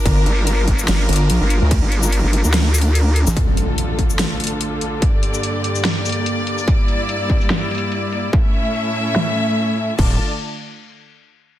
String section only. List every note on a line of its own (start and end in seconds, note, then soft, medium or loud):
0.00 3.33 D4 medium
0.00 3.33 A#4 medium
0.06 3.33 F4 medium
3.36 5.00 D2 medium
3.36 6.64 D3 medium
3.36 5.00 A3 medium
3.36 5.00 F4 medium
3.36 5.00 A4 medium
5.02 6.66 G2 medium
5.02 8.30 A#3 medium
5.02 6.66 G4 medium
5.02 8.30 D5 medium
6.68 8.31 G2 medium
6.68 8.31 G3 medium
6.68 8.31 E4 medium
8.33 9.97 A2 medium
8.33 9.97 A3 medium
8.33 9.97 C#4 medium
8.33 9.97 E4 medium
8.33 9.97 E5 medium
9.99 10.18 D3 medium
9.99 10.18 A3 medium
9.99 10.18 F4 medium
9.99 10.18 D5 medium
9.99 10.18 A5 medium